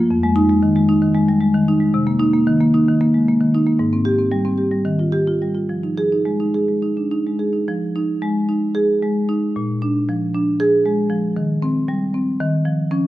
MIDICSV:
0, 0, Header, 1, 2, 480
1, 0, Start_track
1, 0, Tempo, 527704
1, 101, Time_signature, 7, 3, 24, 8
1, 4423, Tempo, 560748
1, 6823, Tempo, 539568
1, 8263, Tempo, 519031
1, 11763, End_track
2, 0, Start_track
2, 0, Title_t, "Marimba"
2, 0, Program_c, 0, 12
2, 0, Note_on_c, 0, 58, 72
2, 95, Note_off_c, 0, 58, 0
2, 96, Note_on_c, 0, 41, 86
2, 213, Note_on_c, 0, 56, 83
2, 325, Note_on_c, 0, 63, 117
2, 404, Note_off_c, 0, 56, 0
2, 448, Note_on_c, 0, 56, 74
2, 520, Note_off_c, 0, 63, 0
2, 570, Note_on_c, 0, 51, 82
2, 641, Note_off_c, 0, 56, 0
2, 689, Note_on_c, 0, 56, 84
2, 763, Note_off_c, 0, 51, 0
2, 806, Note_on_c, 0, 63, 81
2, 883, Note_off_c, 0, 56, 0
2, 928, Note_on_c, 0, 51, 76
2, 1002, Note_off_c, 0, 63, 0
2, 1044, Note_on_c, 0, 56, 85
2, 1123, Note_off_c, 0, 51, 0
2, 1169, Note_on_c, 0, 55, 68
2, 1240, Note_off_c, 0, 56, 0
2, 1281, Note_on_c, 0, 56, 80
2, 1291, Note_off_c, 0, 55, 0
2, 1405, Note_on_c, 0, 51, 76
2, 1478, Note_off_c, 0, 56, 0
2, 1531, Note_on_c, 0, 63, 82
2, 1600, Note_off_c, 0, 51, 0
2, 1639, Note_on_c, 0, 56, 67
2, 1722, Note_off_c, 0, 63, 0
2, 1732, Note_off_c, 0, 41, 0
2, 1765, Note_off_c, 0, 56, 0
2, 1765, Note_on_c, 0, 48, 82
2, 1881, Note_on_c, 0, 58, 75
2, 1998, Note_on_c, 0, 63, 104
2, 2078, Note_off_c, 0, 58, 0
2, 2123, Note_on_c, 0, 58, 75
2, 2196, Note_off_c, 0, 63, 0
2, 2245, Note_on_c, 0, 51, 84
2, 2319, Note_off_c, 0, 58, 0
2, 2370, Note_on_c, 0, 58, 85
2, 2441, Note_off_c, 0, 51, 0
2, 2495, Note_on_c, 0, 63, 76
2, 2565, Note_off_c, 0, 58, 0
2, 2622, Note_on_c, 0, 51, 68
2, 2688, Note_off_c, 0, 63, 0
2, 2735, Note_on_c, 0, 58, 81
2, 2812, Note_off_c, 0, 51, 0
2, 2858, Note_on_c, 0, 56, 62
2, 2930, Note_off_c, 0, 58, 0
2, 2979, Note_off_c, 0, 56, 0
2, 2988, Note_on_c, 0, 58, 75
2, 3099, Note_on_c, 0, 51, 71
2, 3176, Note_off_c, 0, 58, 0
2, 3225, Note_on_c, 0, 63, 82
2, 3291, Note_off_c, 0, 51, 0
2, 3334, Note_on_c, 0, 58, 67
2, 3413, Note_off_c, 0, 63, 0
2, 3417, Note_off_c, 0, 48, 0
2, 3451, Note_on_c, 0, 44, 77
2, 3455, Note_off_c, 0, 58, 0
2, 3573, Note_on_c, 0, 60, 65
2, 3685, Note_on_c, 0, 67, 95
2, 3765, Note_off_c, 0, 60, 0
2, 3808, Note_on_c, 0, 60, 63
2, 3882, Note_off_c, 0, 67, 0
2, 3925, Note_on_c, 0, 55, 73
2, 4004, Note_off_c, 0, 60, 0
2, 4048, Note_on_c, 0, 60, 70
2, 4124, Note_off_c, 0, 55, 0
2, 4163, Note_on_c, 0, 67, 68
2, 4247, Note_off_c, 0, 60, 0
2, 4288, Note_on_c, 0, 55, 61
2, 4366, Note_off_c, 0, 67, 0
2, 4391, Note_off_c, 0, 44, 0
2, 4414, Note_on_c, 0, 51, 84
2, 4417, Note_off_c, 0, 55, 0
2, 4535, Note_on_c, 0, 65, 59
2, 4647, Note_on_c, 0, 67, 87
2, 4726, Note_off_c, 0, 65, 0
2, 4775, Note_on_c, 0, 65, 60
2, 4843, Note_off_c, 0, 67, 0
2, 4899, Note_on_c, 0, 55, 62
2, 4969, Note_off_c, 0, 65, 0
2, 5008, Note_on_c, 0, 65, 51
2, 5093, Note_off_c, 0, 55, 0
2, 5115, Note_off_c, 0, 51, 0
2, 5134, Note_on_c, 0, 53, 59
2, 5136, Note_off_c, 0, 65, 0
2, 5255, Note_on_c, 0, 63, 58
2, 5375, Note_on_c, 0, 68, 77
2, 5453, Note_off_c, 0, 63, 0
2, 5502, Note_on_c, 0, 63, 61
2, 5573, Note_off_c, 0, 68, 0
2, 5614, Note_on_c, 0, 56, 66
2, 5696, Note_off_c, 0, 63, 0
2, 5738, Note_on_c, 0, 63, 62
2, 5812, Note_off_c, 0, 56, 0
2, 5862, Note_on_c, 0, 68, 58
2, 5933, Note_off_c, 0, 63, 0
2, 5983, Note_on_c, 0, 56, 48
2, 6055, Note_off_c, 0, 68, 0
2, 6102, Note_on_c, 0, 63, 55
2, 6176, Note_off_c, 0, 56, 0
2, 6227, Note_on_c, 0, 62, 48
2, 6295, Note_off_c, 0, 63, 0
2, 6346, Note_off_c, 0, 62, 0
2, 6350, Note_on_c, 0, 63, 60
2, 6480, Note_on_c, 0, 56, 54
2, 6540, Note_off_c, 0, 63, 0
2, 6588, Note_on_c, 0, 68, 58
2, 6667, Note_off_c, 0, 56, 0
2, 6706, Note_on_c, 0, 63, 53
2, 6778, Note_off_c, 0, 68, 0
2, 6787, Note_off_c, 0, 53, 0
2, 6824, Note_off_c, 0, 63, 0
2, 6836, Note_on_c, 0, 53, 70
2, 7081, Note_on_c, 0, 63, 71
2, 7316, Note_on_c, 0, 56, 74
2, 7459, Note_off_c, 0, 63, 0
2, 7554, Note_on_c, 0, 63, 66
2, 7696, Note_off_c, 0, 56, 0
2, 7785, Note_on_c, 0, 68, 91
2, 7934, Note_off_c, 0, 63, 0
2, 8032, Note_on_c, 0, 56, 69
2, 8168, Note_off_c, 0, 68, 0
2, 8266, Note_on_c, 0, 63, 68
2, 8416, Note_off_c, 0, 56, 0
2, 8479, Note_off_c, 0, 53, 0
2, 8511, Note_off_c, 0, 63, 0
2, 8518, Note_on_c, 0, 46, 72
2, 8758, Note_on_c, 0, 62, 72
2, 9006, Note_on_c, 0, 53, 79
2, 9145, Note_off_c, 0, 62, 0
2, 9242, Note_on_c, 0, 62, 71
2, 9389, Note_off_c, 0, 53, 0
2, 9479, Note_on_c, 0, 68, 102
2, 9625, Note_off_c, 0, 62, 0
2, 9716, Note_on_c, 0, 56, 75
2, 9862, Note_off_c, 0, 68, 0
2, 9941, Note_on_c, 0, 53, 70
2, 10098, Note_off_c, 0, 56, 0
2, 10162, Note_off_c, 0, 46, 0
2, 10187, Note_off_c, 0, 53, 0
2, 10187, Note_on_c, 0, 51, 77
2, 10426, Note_on_c, 0, 60, 90
2, 10666, Note_on_c, 0, 55, 69
2, 10813, Note_off_c, 0, 60, 0
2, 10903, Note_on_c, 0, 60, 74
2, 11052, Note_off_c, 0, 55, 0
2, 11118, Note_off_c, 0, 51, 0
2, 11146, Note_off_c, 0, 60, 0
2, 11147, Note_on_c, 0, 51, 95
2, 11379, Note_on_c, 0, 53, 74
2, 11609, Note_off_c, 0, 53, 0
2, 11616, Note_on_c, 0, 61, 90
2, 11620, Note_on_c, 0, 53, 63
2, 11763, Note_off_c, 0, 51, 0
2, 11763, Note_off_c, 0, 53, 0
2, 11763, Note_off_c, 0, 61, 0
2, 11763, End_track
0, 0, End_of_file